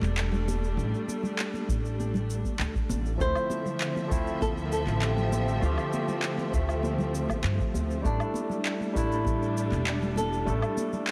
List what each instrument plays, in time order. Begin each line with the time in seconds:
Already playing: string section G3 A3 D4
0.02 upright bass E1, clap, high conga, cabasa
0.18 clap, cabasa
0.32 low conga, cabasa
0.48 high conga, cabasa
0.64 cabasa
0.77 upright bass A1, cabasa
0.94 cabasa
1.08 high conga, cabasa
1.23 low conga, cabasa
1.39 clap, cabasa
1.54 high conga, cabasa
1.69 upright bass A1, kick, cabasa
1.85 cabasa
2.00 high conga, cabasa
2.14 low conga, cabasa
2.30 cabasa
2.45 kick, high conga, cabasa
2.59 upright bass D2, clap, cabasa
2.75 kick, cabasa
2.89 upright bass A1, high conga, cabasa
3.06 cabasa
3.18 upright bass D2, string section D3 F3 A3 C4 E5, tine electric piano F3 A3 C4, nylon-string guitar C5, kick, cabasa
3.22 tine electric piano E4
3.35 cabasa, low woodblock
3.50 high conga, cabasa
3.65 low conga, cabasa
3.81 clap, cabasa
3.96 high conga, cabasa
4.08 upright bass D2, tine electric piano F3 A3 C4, kick, cabasa
4.13 tine electric piano E4
4.27 cabasa
4.41 nylon-string guitar A4, kick, high conga, cabasa
4.57 cabasa
4.65 nylon-string guitar A#4
4.72 nylon-string guitar A4, cabasa
4.87 upright bass A1, clap, high conga, cabasa
5.02 nylon-string guitar G4, clap, cabasa
5.17 low conga, cabasa
5.32 high conga, cabasa
5.48 cabasa
5.60 upright bass D2, tine electric piano F3 A3 C4, nylon-string guitar F4, cabasa
5.64 tine electric piano G4
5.78 cabasa, low woodblock
5.93 high conga, cabasa
6.08 low conga, cabasa
6.22 clap, cabasa
6.38 high conga, cabasa
6.51 upright bass D2, tine electric piano F3 A3 C4, kick, cabasa
6.55 tine electric piano E5
6.69 cabasa, low woodblock
6.83 high conga, cabasa
6.98 low conga, cabasa
7.15 cabasa
7.29 kick, high conga, cabasa, low woodblock
7.44 upright bass G2, clap, cabasa
7.59 kick, cabasa
7.74 upright bass D2, high conga, cabasa
7.91 cabasa
8.02 upright bass A1, tine electric piano G3 A3 D4, string section G3 D4, nylon-string guitar D4, kick, cabasa
8.07 tine electric piano E4
8.20 cabasa, low woodblock
8.34 high conga, cabasa
8.50 low conga, cabasa
8.65 clap, cabasa
8.80 high conga, cabasa
8.93 upright bass A1, tine electric piano G3 A3 D4, nylon-string guitar E4, kick, cabasa
8.98 tine electric piano E4
9.12 cabasa
9.25 kick, high conga, cabasa
9.43 cabasa
9.57 cabasa
9.71 upright bass E1, clap, high conga, cabasa
9.87 clap, cabasa
10.02 low conga, cabasa
10.16 nylon-string guitar A4, high conga, cabasa
10.33 cabasa
10.45 upright bass A1, tine electric piano G3 A3 D4, cabasa
10.50 tine electric piano A4
10.62 cabasa, low woodblock
10.77 high conga, cabasa
10.93 low conga, cabasa
11.07 clap, cabasa